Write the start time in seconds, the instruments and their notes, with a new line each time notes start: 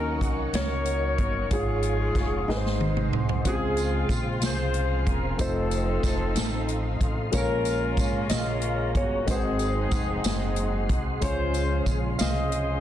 Already playing: upright bass D#2, upright piano D#3 A#3 C#4 D#4 F#4 C#5, string section F#3 A#3 D#4, horn section C#4 F#4 A#4, electric slide guitar A#4, tonewheel organ A#4 D#5 F#5 C#6
0.21 upright bass C2, kick, closed hi-hat
0.53 upright bass C#2, horn section F#4 A#4 C#5, electric slide guitar C#5, snare, closed hi-hat
0.85 closed hi-hat
1.18 upright bass G1, kick, closed hi-hat
1.51 upright bass G#1, upright piano G#2 F4 G#4 C#5, string section F3 G#3 C#4 F4, horn section C#4 F4 G#4, tonewheel organ G#4 C#5 F5, electric slide guitar G#4, kick, closed hi-hat
1.83 closed hi-hat
2.15 upright bass F1, kick, snare, closed hi-hat
2.48 upright bass G#1, upright piano G#2 D#4 G#4 B4, string section D#3 D#4 C5, tonewheel organ C5 D#5 C6, snare
2.57 upright piano C5
2.66 snare
2.81 high tom
2.97 mid tom
3.12 upright bass C2, mid tom
3.29 floor tom
3.44 upright bass C#2, upright piano C#3 G#3 C4 F4 C5, string section F3 G#3 C4 F4, tonewheel organ G#4 C5 F5 C6, electric slide guitar G#4, horn section G#4, kick, closed hi-hat, tambourine
3.48 horn section C4 F4
3.77 closed hi-hat, tambourine
4.09 upright bass A#1, kick, closed hi-hat, tambourine
4.41 upright bass C2, horn section F4 G#4, snare, closed hi-hat, tambourine
4.46 horn section C5
4.74 closed hi-hat
5.07 upright bass E1, horn section A#4, kick, closed hi-hat
5.37 upright bass F1, upright piano A3 C4 D#4 F4 C5, string section A3 D#4, horn section C4 D#4 A4, tonewheel organ A4 D#5, electric slide guitar C5, kick, closed hi-hat, tambourine
5.71 closed hi-hat, tambourine
6.03 upright bass F1, kick, snare, closed hi-hat, tambourine
6.35 upright bass A1, snare, closed hi-hat, tambourine
6.68 closed hi-hat
7.01 upright bass A1, kick, closed hi-hat
7.31 upright bass A#1, upright piano A#2 G#3 A#3 C#4 A4 F5, string section C#3 G#3 A#3 C#4, tonewheel organ G#4 C#5 A#5, electric slide guitar C#5, kick, closed hi-hat, tambourine
7.37 horn section C#4 F4 A#4
7.41 upright piano A#4
7.65 closed hi-hat, tambourine
7.97 upright bass G#1, kick, closed hi-hat, tambourine
8.29 upright bass A#1, horn section G#3 C#4, electric slide guitar D#5, snare, closed hi-hat, tambourine
8.34 horn section F4
8.62 closed hi-hat
8.95 upright bass G1, electric slide guitar C#5, kick, closed hi-hat
8.99 horn section F#4
9.26 upright bass G#1, upright piano G#2 G#3 C4 D#4 F#4 B4, string section F#3 G#3 C4 D#4, tonewheel organ D#5 F#5 C6, kick, closed hi-hat, tambourine
9.30 horn section C4 D#4 G#4, electric slide guitar C5
9.36 upright piano C5
9.59 closed hi-hat, tambourine
9.91 upright bass F1, kick, closed hi-hat, tambourine
10.24 upright bass F#1, snare, closed hi-hat, tambourine
10.56 closed hi-hat
10.89 upright bass C2, kick, closed hi-hat
11.21 upright bass C#2, upright piano C#3 G#3 C#4 F4 C6, string section F3 C#4, tonewheel organ C#4 F5, horn section F4 G#4 C5, electric slide guitar C#5, kick, closed hi-hat, tambourine
11.54 closed hi-hat, tambourine
11.86 upright bass A#1, kick, closed hi-hat, tambourine
12.19 upright bass C2, horn section G#4 C5 D#5, electric slide guitar F5, snare, closed hi-hat, tambourine
12.52 closed hi-hat